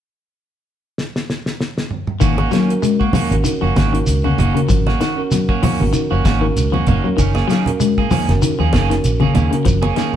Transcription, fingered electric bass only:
2.22 2.46 G#1 medium
3.31 3.42 G#1 medium
3.62 3.73 F#1 medium
3.77 4.01 G#1 medium
4.08 4.32 C#2 medium
4.39 4.52 F#1 medium
4.70 4.94 G#1 medium
5.80 5.91 G#1 medium
6.11 6.22 F#1 medium
6.25 6.49 G#1 loud
6.56 6.80 C#2 medium
6.87 7.00 F#1 medium
7.19 7.43 F#1 medium
8.29 8.39 F#1 loud
8.59 8.70 D#2 medium
8.74 8.98 F#1 medium
9.04 9.28 A#1 medium
9.35 9.49 D#2 medium
9.66 9.90 F#1 medium

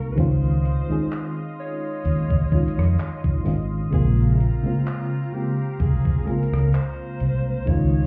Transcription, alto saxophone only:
0.00 0.14 A#4 loud
0.12 0.20 B4 medium
0.19 1.33 C5 loud
1.60 3.42 C#5 loud
3.94 4.35 G#4 loud
4.34 4.41 E4 medium
4.40 5.35 F4 loud
5.33 5.82 G4 medium
5.81 6.29 G#4 medium
6.27 6.76 A#4 loud
6.74 7.70 C5 loud
7.68 8.07 C#5 loud

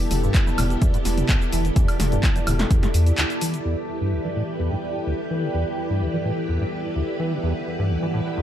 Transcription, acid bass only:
0.23 0.36 G2 medium
0.34 0.41 D2 medium
0.47 0.50 E3 medium
0.58 0.65 A2 medium
0.82 0.92 E2 medium
0.94 0.98 G2 medium
1.29 1.36 D2 medium
1.53 1.66 E3 medium
1.65 1.71 D3 medium
1.76 1.86 E2 medium
2.12 2.25 G2 medium
2.23 2.30 D2 medium
2.36 2.40 E3 medium
2.47 2.54 A2 medium
2.71 2.81 E2 medium
2.83 2.87 G2 medium
3.18 3.25 D2 medium
3.42 3.55 E3 medium
3.54 3.60 D3 medium
3.65 3.75 E2 medium
4.01 4.14 G2 medium
4.12 4.19 D2 medium
4.25 4.28 E3 medium
4.36 4.43 A2 medium
4.59 4.70 E2 medium
4.72 4.76 G2 medium
5.07 5.14 D2 medium
5.30 5.44 E3 medium
5.43 5.49 D3 medium
5.54 5.64 E2 medium
5.90 6.03 G2 medium
6.01 6.08 D2 medium
6.14 6.17 E3 medium
6.25 6.32 A2 medium
6.48 6.59 E2 medium
6.61 6.65 G2 medium
6.96 7.03 D2 medium
7.19 7.33 E3 medium
7.32 7.38 D3 medium
7.43 7.53 E2 medium
7.79 7.92 G2 medium
7.90 7.97 D2 medium
8.03 8.06 E3 medium
8.14 8.21 A2 medium
8.38 8.42 E2 medium

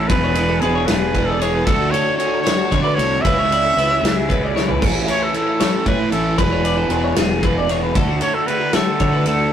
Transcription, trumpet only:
0.08 0.62 B4 loud
0.60 0.87 G#4 medium
0.86 1.27 B4 medium
1.25 1.41 A4 medium
1.40 1.67 G#4 medium
1.65 1.92 A4 loud
1.91 2.17 C#5 loud
2.17 2.42 C#5 medium
2.42 2.80 C#5 loud
2.82 2.96 D5 loud
2.94 3.23 C#5 loud
3.21 4.54 E5 loud
5.10 5.24 C#5 loud
5.23 5.35 A4 medium
5.36 5.89 A4 medium
5.87 6.11 B4 loud
6.11 6.40 A4 medium
6.39 7.17 B4 medium
8.23 8.36 C#5 loud
8.34 8.48 A4 medium
8.47 8.75 B4 loud
8.74 9.26 A4 loud
9.27 9.51 A4 medium

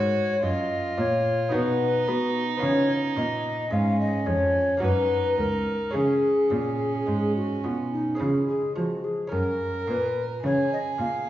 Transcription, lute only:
0.00 0.39 G#2 soft
0.00 1.47 C#4 soft
0.00 1.47 F#4 soft
0.00 1.48 A#4 soft
0.43 0.94 F#2 soft
0.97 1.49 A#2 soft
1.49 2.06 B3 soft
1.49 2.57 D#4 soft
1.49 2.58 F#4 soft
1.54 2.04 B2 soft
2.08 2.56 B3 soft
2.57 4.75 B3 soft
2.57 4.76 C#4 soft
2.57 4.77 F4 soft
2.62 3.13 C#3 soft
3.16 3.67 A#2 soft
3.70 4.22 G#2 soft
4.26 4.78 F2 soft
4.77 5.88 A#3 soft
4.77 5.89 C#4 soft
4.77 5.90 F#4 soft
4.82 5.33 F#2 soft
5.91 6.46 C#3 soft
5.91 8.14 C#4 soft
5.91 8.15 G#4 soft
6.50 7.03 A#2 soft
7.06 7.59 G#2 soft
7.64 8.16 B2 soft
8.15 9.26 G#3 soft
8.15 9.26 C#4 soft
8.15 9.28 G#4 soft
8.19 8.72 C#3 soft
8.75 9.28 F3 soft
9.27 11.29 C#4 soft
9.27 11.29 A#4 soft
9.32 9.83 F#2 soft
9.87 10.39 A#2 soft
10.43 10.95 C#3 soft
10.98 11.29 A#2 soft

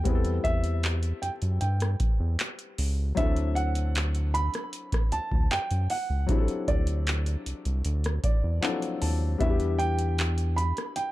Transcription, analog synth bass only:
0.06 0.40 E2 loud
0.45 1.13 E2 loud
1.23 1.30 F#2 soft
1.42 1.59 F#2 medium
1.62 1.96 G2 loud
2.20 2.37 E2 loud
2.79 3.13 C#2 medium
3.17 4.50 D2 loud
5.12 5.20 D2 soft
5.32 5.49 D2 loud
5.51 5.59 F#2 soft
5.71 5.88 F#2 loud
6.10 6.27 C#2 medium
6.68 7.37 D2 loud
7.46 7.54 C2 soft
7.66 7.83 C2 medium
7.85 8.19 D2 loud
8.44 8.61 E2 medium
9.02 9.36 D#2 loud
9.41 10.73 E2 loud

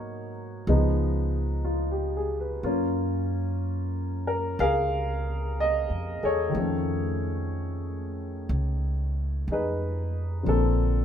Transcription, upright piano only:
0.00 0.67 F#3 soft
0.00 0.68 A#3 soft
0.00 0.67 B3 soft
0.00 0.68 D#4 soft
0.00 0.30 F#4 medium
0.00 0.30 A#4 medium
0.00 0.29 C#5 medium
0.68 2.63 F3 soft
0.68 2.63 G#3 soft
0.68 2.64 B3 soft
0.68 2.64 D#4 medium
1.65 2.10 F4 soft
1.91 2.32 G4 soft
2.17 2.46 G#4 soft
2.40 2.73 B4 soft
2.64 6.54 A#3 soft
2.64 6.55 C#4 medium
2.64 6.54 F4 soft
4.27 4.59 A#4 medium
4.60 6.23 G#4 medium
4.60 6.51 A#4 medium
4.60 5.60 F5 medium
5.60 6.24 D#5 medium
6.23 9.47 G#4 medium
6.23 9.46 A4 soft
6.23 9.47 C#5 medium
6.49 10.45 D#3 soft
6.49 10.43 F3 soft
6.56 10.48 A3 soft
6.56 10.50 C#4 soft
9.51 10.45 D#4 medium
9.51 10.44 G#4 soft
9.51 10.45 B4 medium
10.43 11.05 D3 soft
10.43 11.05 F3 soft
10.43 11.05 A#3 soft
10.48 11.05 C4 soft
10.48 11.05 D4 soft
10.48 11.05 A4 medium

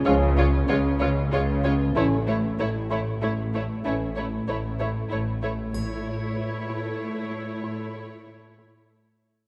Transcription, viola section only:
0.07 0.15 G#3 soft
0.39 0.47 G#3 soft
0.70 0.78 G#3 soft
1.01 1.09 G#3 soft
1.33 1.41 G#3 soft
1.64 1.72 G#3 soft
1.95 2.03 A3 soft
2.27 2.35 A3 soft
2.59 2.67 A3 soft
2.90 2.98 A3 soft
3.21 3.29 A3 soft
3.53 3.61 A3 soft
3.84 3.92 A3 soft
4.17 4.25 A3 soft
4.49 4.57 A3 soft
4.80 4.88 A3 soft
5.12 5.20 A3 soft
5.43 5.51 A3 soft
5.75 9.29 A3 soft
5.75 9.29 E4 soft

